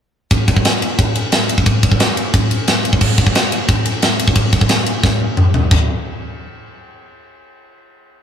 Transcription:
0.31 kick loud
0.31 ride loud
0.48 kick medium
0.48 ride medium
0.56 kick medium
0.65 snare loud
0.65 ride loud
0.82 ride medium
0.99 kick loud
0.99 ride loud
1.15 ride medium
1.32 snare loud
1.32 ride loud
1.49 ride medium
1.58 kick medium
1.66 kick loud
1.66 ride loud
1.83 kick medium
1.83 ride medium
1.92 kick medium
2.00 snare loud
2.00 ride loud
2.17 ride medium
2.34 kick loud
2.34 ride loud
2.51 ride medium
2.68 snare loud
2.68 ride medium
2.85 ride medium
2.93 kick medium
3.01 kick loud
3.01 crash loud
3.18 kick medium
3.18 ride medium
3.27 kick medium
3.35 snare loud
3.35 ride loud
3.52 ride medium
3.69 kick loud
3.69 ride loud
3.85 ride medium
4.02 snare loud
4.02 ride loud
4.19 ride medium
4.28 kick medium
4.35 kick loud
4.35 ride loud
4.53 kick medium
4.53 ride medium
4.61 kick medium
4.69 snare loud
4.69 ride loud
4.86 ride medium
5.03 kick loud
5.03 snare medium
5.37 mid tom medium
5.54 floor tom medium
5.71 kick loud
5.71 floor tom loud
5.71 china medium

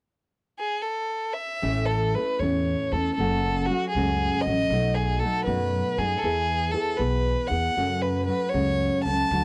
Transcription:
0.60 0.83 G#4 medium
0.82 1.35 A4 medium
1.33 1.88 E5 medium
1.62 2.14 A1 medium
1.62 2.15 A2 medium
1.62 2.15 E3 medium
1.62 2.15 A3 medium
1.62 2.17 C#4 medium
1.62 2.16 E4 medium
1.62 2.17 A4 medium
1.86 2.16 A4 medium
2.15 2.41 A3 soft
2.15 2.42 C#4 soft
2.15 2.41 E4 soft
2.15 2.41 A4 soft
2.15 2.41 B4 medium
2.40 2.74 E2 medium
2.40 2.94 A2 soft
2.40 2.94 E3 soft
2.40 2.94 A3 soft
2.40 2.93 C#4 medium
2.40 2.92 E4 soft
2.40 2.92 A4 soft
2.40 2.94 C#5 medium
2.92 3.09 E2 medium
2.92 3.19 A3 soft
2.92 3.19 C#4 soft
2.92 3.18 E4 soft
2.92 3.18 A4 soft
2.92 3.14 A4 medium
3.15 3.68 F#1 medium
3.15 3.67 A4 medium
3.19 3.70 F#2 soft
3.19 3.70 C#3 medium
3.19 3.70 F#3 medium
3.19 3.70 A3 medium
3.19 3.69 C#4 medium
3.19 3.71 F#4 medium
3.66 3.89 F#4 medium
3.70 3.95 F#3 soft
3.70 3.95 A3 soft
3.70 3.95 C#4 soft
3.70 3.96 F#4 medium
3.90 4.43 G#4 medium
3.95 4.28 C#2 medium
3.95 4.47 F#2 soft
3.95 4.47 C#3 soft
3.95 4.47 F#3 soft
3.95 4.47 A3 soft
3.95 4.46 C#4 medium
3.95 4.46 F#4 medium
4.41 4.96 D#5 medium
4.46 4.62 A1 medium
4.46 4.72 F#3 soft
4.46 4.72 A3 soft
4.46 4.71 C#4 soft
4.46 4.71 F#4 soft
4.70 5.20 B1 medium
4.70 5.22 B2 medium
4.70 5.22 F#3 medium
4.70 5.22 A3 medium
4.70 5.22 D#4 medium
4.70 5.23 F#4 medium
4.95 5.21 G#4 medium
5.19 5.47 F#3 soft
5.19 5.47 A3 medium
5.19 5.44 A4 medium
5.24 5.46 D#4 soft
5.24 5.46 F#4 medium
5.45 5.80 F#2 medium
5.45 5.99 B2 soft
5.45 5.99 F#3 soft
5.45 5.99 A3 medium
5.45 5.98 D#4 soft
5.45 5.98 F#4 medium
5.45 6.00 B4 medium
5.98 6.14 F#2 medium
5.98 6.23 A3 soft
5.98 6.24 D#4 soft
5.98 6.24 F#4 soft
5.98 6.17 G#4 medium
6.17 6.73 G#4 medium
6.17 6.21 A4 medium
6.23 6.73 E2 medium
6.23 6.71 E3 medium
6.23 6.72 B3 medium
6.23 6.72 E4 medium
6.23 6.73 G#4 medium
6.71 6.99 E3 soft
6.71 6.98 B3 soft
6.71 6.98 E4 medium
6.71 6.97 G#4 medium
6.71 6.99 A4 medium
6.97 7.33 B1 medium
6.97 7.52 E3 soft
6.97 7.50 B3 soft
6.97 7.50 E4 medium
6.97 7.49 G#4 soft
6.97 7.49 B4 medium
7.48 7.68 E2 medium
7.48 7.77 E4 soft
7.48 7.77 G#4 soft
7.48 8.03 F#5 medium
7.52 7.77 B3 soft
7.77 8.29 F#2 medium
7.77 8.28 F#2 medium
7.77 8.30 C#3 medium
7.77 8.28 F#3 medium
7.77 8.28 A3 medium
7.77 8.28 C#4 medium
7.77 8.29 F#4 medium
8.02 8.25 B4 medium
8.26 8.53 F#3 soft
8.26 8.53 A3 soft
8.26 8.53 C#4 soft
8.26 8.52 F#4 medium
8.26 8.51 B4 medium
8.49 9.03 C#5 medium
8.54 8.88 C#2 medium
8.54 9.07 F#2 soft
8.54 9.07 C#3 soft
8.54 9.07 F#3 soft
8.54 9.06 A3 soft
8.54 9.06 C#4 medium
8.54 9.05 F#4 soft
9.04 9.22 C#2 medium
9.04 9.32 F#3 soft
9.04 9.32 A3 soft
9.04 9.32 C#4 soft
9.04 9.32 F#4 soft
9.04 9.44 A5 medium
9.31 9.44 D2 medium
9.31 9.44 D3 medium
9.31 9.44 F#3 medium
9.31 9.44 A3 medium
9.31 9.44 D4 medium
9.31 9.44 F#4 medium

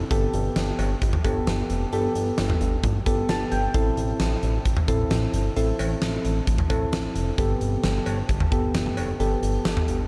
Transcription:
0.11 0.27 G1 loud
0.11 0.90 B3 medium
0.11 0.90 G4 medium
0.11 0.90 A4 medium
0.11 kick loud
0.11 closed hi-hat medium
0.33 0.49 G1 loud
0.33 closed hi-hat medium
0.56 0.72 G1 loud
0.56 snare loud
0.56 closed hi-hat medium
0.79 0.95 G1 loud
0.79 closed hi-hat medium
0.79 cowbell medium
1.02 1.18 G1 loud
1.02 kick loud
1.02 closed hi-hat medium
1.13 mid tom loud
1.24 1.40 G1 loud
1.24 1.84 B3 medium
1.24 1.84 G4 medium
1.24 1.84 A4 medium
1.24 kick loud
1.24 closed hi-hat medium
1.24 cowbell medium
1.47 1.63 G1 loud
1.47 snare loud
1.47 closed hi-hat medium
1.70 1.86 F1 medium
1.70 closed hi-hat medium
1.92 2.08 G1 loud
1.92 2.72 B3 medium
1.92 2.72 G4 medium
1.92 2.72 A4 loud
1.92 closed hi-hat medium
2.15 2.31 G1 loud
2.15 closed hi-hat medium
2.38 2.54 G1 loud
2.38 snare loud
2.38 closed hi-hat medium
2.50 mid tom loud
2.61 2.77 G1 loud
2.61 closed hi-hat medium
2.83 2.99 G1 loud
2.83 kick loud
2.83 closed hi-hat medium
2.83 mid tom loud
3.06 3.22 G1 loud
3.06 3.66 B3 medium
3.06 3.66 G4 medium
3.06 3.66 A4 medium
3.06 kick loud
3.06 closed hi-hat medium
3.29 3.45 G1 loud
3.29 3.50 A5 medium
3.29 snare loud
3.29 closed hi-hat medium
3.52 3.68 G1 medium
3.52 3.73 G5 medium
3.52 closed hi-hat medium
3.74 3.90 A1 loud
3.74 4.54 C4 medium
3.74 4.54 E4 medium
3.74 4.54 A4 medium
3.74 kick loud
3.74 closed hi-hat medium
3.97 4.13 A1 loud
3.97 closed hi-hat medium
4.20 4.36 A1 loud
4.20 snare loud
4.20 closed hi-hat medium
4.43 4.59 A1 loud
4.43 closed hi-hat medium
4.65 4.81 A1 loud
4.65 kick loud
4.65 closed hi-hat medium
4.77 mid tom loud
4.88 5.04 A1 medium
4.88 5.48 C4 medium
4.88 5.48 E4 medium
4.88 5.48 A4 medium
4.88 kick medium
4.88 closed hi-hat medium
5.11 5.27 A1 loud
5.11 snare loud
5.11 closed hi-hat medium
5.34 5.49 G1 medium
5.34 closed hi-hat medium
5.56 5.72 A1 loud
5.56 6.36 C4 medium
5.56 6.36 E4 medium
5.56 6.36 A4 medium
5.56 closed hi-hat medium
5.79 5.95 A1 loud
5.79 closed hi-hat medium
5.79 cowbell medium
6.02 6.18 A1 medium
6.02 snare loud
6.02 closed hi-hat medium
6.25 6.41 A1 loud
6.25 closed hi-hat medium
6.47 6.63 A1 loud
6.47 kick loud
6.47 closed hi-hat medium
6.58 mid tom loud
6.70 6.86 A1 loud
6.70 7.29 C4 medium
6.70 7.29 E4 medium
6.70 7.29 A4 medium
6.70 kick loud
6.70 closed hi-hat medium
6.70 cowbell medium
6.93 7.09 A1 loud
6.93 snare loud
6.93 closed hi-hat medium
7.15 7.31 F1 medium
7.15 closed hi-hat medium
7.38 7.54 G1 loud
7.38 8.17 B3 medium
7.38 8.17 G4 medium
7.38 8.17 A4 loud
7.38 kick loud
7.38 closed hi-hat medium
7.61 7.77 G1 loud
7.61 closed hi-hat medium
7.84 8.00 G1 loud
7.84 snare loud
7.84 closed hi-hat medium
8.06 8.22 G1 medium
8.06 closed hi-hat medium
8.06 cowbell medium
8.29 8.45 G1 loud
8.29 kick loud
8.29 closed hi-hat medium
8.40 mid tom loud
8.52 8.68 G1 loud
8.52 9.11 B3 medium
8.52 9.11 G4 medium
8.52 9.11 A4 medium
8.52 kick loud
8.52 closed hi-hat medium
8.74 8.90 G1 loud
8.74 snare loud
8.74 closed hi-hat medium
8.86 mid tom medium
8.97 9.13 F1 medium
8.97 closed hi-hat medium
8.97 cowbell medium
9.20 9.36 G1 loud
9.20 9.99 B3 medium
9.20 9.99 G4 medium
9.20 9.99 A4 medium
9.20 closed hi-hat medium
9.43 9.59 G1 loud
9.43 closed hi-hat medium
9.65 9.81 G1 loud
9.65 snare loud
9.65 closed hi-hat medium
9.77 mid tom loud
9.88 10.04 G1 loud
9.88 closed hi-hat medium

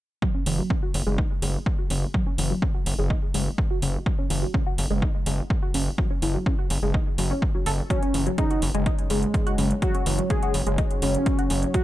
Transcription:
0.22 0.31 F#3 medium
0.22 kick loud
0.35 0.43 C#4 medium
0.46 0.61 F#1 loud
0.46 0.58 E3 medium
0.46 open hi-hat medium
0.59 0.70 F#3 medium
0.70 0.79 C#3 loud
0.70 kick loud
0.83 0.91 F#4 medium
0.94 1.02 F#1 medium
0.94 open hi-hat medium
1.07 1.21 F#1 medium
1.07 1.15 G#3 loud
1.18 1.27 D#4 medium
1.18 kick loud
1.42 1.57 F#1 medium
1.42 1.51 G#3 medium
1.42 open hi-hat loud
1.66 kick loud
1.79 1.87 F#4 medium
1.90 2.05 F#1 medium
1.90 1.99 C#3 medium
1.90 open hi-hat medium
2.14 2.23 F#3 medium
2.14 kick loud
2.27 2.35 C#4 medium
2.38 2.53 F#1 medium
2.38 2.50 E3 medium
2.38 open hi-hat loud
2.51 2.62 F#3 medium
2.62 2.71 C#3 loud
2.62 kick loud
2.75 2.83 F#4 medium
2.86 2.94 F#1 medium
2.86 open hi-hat loud
2.99 3.13 F#1 medium
2.99 3.07 G#3 loud
3.10 3.19 D#4 medium
3.10 kick loud
3.34 3.49 F#1 medium
3.34 3.43 G#3 medium
3.34 open hi-hat loud
3.58 kick loud
3.71 3.79 F#4 medium
3.82 3.97 F#1 medium
3.82 3.91 C#3 medium
3.82 open hi-hat loud
4.06 4.15 F#3 medium
4.06 kick loud
4.19 4.27 C#4 medium
4.30 4.45 F#1 medium
4.30 4.42 E3 medium
4.30 open hi-hat loud
4.43 4.54 F#3 medium
4.54 4.63 C#3 loud
4.54 kick loud
4.67 4.75 F#4 medium
4.78 4.86 F#1 medium
4.78 open hi-hat loud
4.91 5.05 F#1 medium
4.91 4.99 G#3 loud
5.02 5.11 D#4 medium
5.02 kick loud
5.26 5.41 F#1 loud
5.26 5.35 G#3 medium
5.26 open hi-hat loud
5.50 kick loud
5.63 5.71 F#4 medium
5.74 5.89 F#1 medium
5.74 5.83 C#3 medium
5.74 open hi-hat loud
5.98 6.07 F#3 medium
5.98 kick loud
6.11 6.19 C#4 medium
6.22 6.37 F#1 medium
6.22 6.34 E3 medium
6.22 open hi-hat loud
6.35 6.46 F#3 medium
6.46 6.55 C#3 loud
6.46 kick loud
6.59 6.67 F#4 medium
6.70 6.78 F#1 loud
6.70 open hi-hat loud
6.83 6.97 F#1 medium
6.83 6.91 G#3 loud
6.94 7.03 D#4 medium
6.94 kick loud
7.18 7.33 F#1 medium
7.18 7.30 F#3 medium
7.18 open hi-hat loud
7.31 7.42 C#4 medium
7.42 kick loud
7.55 7.66 F#3 medium
7.66 7.81 F#1 medium
7.66 7.71 A4 loud
7.66 open hi-hat loud
7.90 7.99 F#3 medium
7.90 11.84 F#3 medium
7.90 11.84 C#4 medium
7.90 8.21 C#4 loud
7.90 11.84 F#4 medium
7.90 11.84 C#5 medium
7.90 kick loud
7.90 closed hi-hat medium
8.03 8.11 C#4 medium
8.03 closed hi-hat soft
8.14 8.29 F#1 loud
8.14 8.26 E3 medium
8.14 open hi-hat loud
8.27 8.38 F#3 medium
8.27 closed hi-hat soft
8.38 8.47 C#3 loud
8.38 8.61 D#4 loud
8.38 kick loud
8.38 closed hi-hat medium
8.51 8.59 F#4 medium
8.51 closed hi-hat soft
8.62 8.70 F#1 medium
8.62 open hi-hat loud
8.74 8.89 F#1 medium
8.74 8.83 G#3 loud
8.74 closed hi-hat soft
8.86 8.95 D#4 medium
8.86 kick loud
8.86 closed hi-hat medium
8.98 closed hi-hat soft
9.10 9.25 F#1 loud
9.10 9.73 G#3 loud
9.10 9.19 G#3 medium
9.10 open hi-hat loud
9.23 closed hi-hat soft
9.34 kick loud
9.34 closed hi-hat medium
9.47 9.55 F#4 medium
9.47 closed hi-hat soft
9.58 9.73 F#1 medium
9.58 9.67 C#3 medium
9.58 open hi-hat loud
9.71 closed hi-hat soft
9.82 9.91 F#3 medium
9.82 10.13 F#4 loud
9.82 kick loud
9.82 closed hi-hat medium
9.95 10.03 C#4 medium
9.95 closed hi-hat soft
10.06 10.21 F#1 loud
10.06 10.18 E3 medium
10.06 open hi-hat medium
10.19 10.30 F#3 medium
10.19 closed hi-hat soft
10.30 10.39 C#3 loud
10.30 10.53 G#4 medium
10.30 kick loud
10.30 closed hi-hat medium
10.43 10.51 F#4 medium
10.43 closed hi-hat soft
10.54 10.62 F#1 loud
10.54 open hi-hat loud
10.67 10.81 F#1 medium
10.67 10.75 G#3 loud
10.67 closed hi-hat soft
10.78 10.87 D#4 medium
10.78 kick loud
10.78 closed hi-hat medium
10.91 closed hi-hat soft
11.02 11.17 F#1 loud
11.02 11.11 G#3 medium
11.02 11.65 C#4 medium
11.02 open hi-hat loud
11.15 closed hi-hat soft
11.26 kick loud
11.26 closed hi-hat medium
11.39 11.47 F#4 medium
11.39 closed hi-hat soft
11.50 11.65 F#1 medium
11.50 11.59 C#3 medium
11.50 open hi-hat loud
11.63 closed hi-hat soft
11.74 11.83 F#3 medium
11.74 11.84 F#4 loud
11.74 kick loud
11.74 closed hi-hat medium

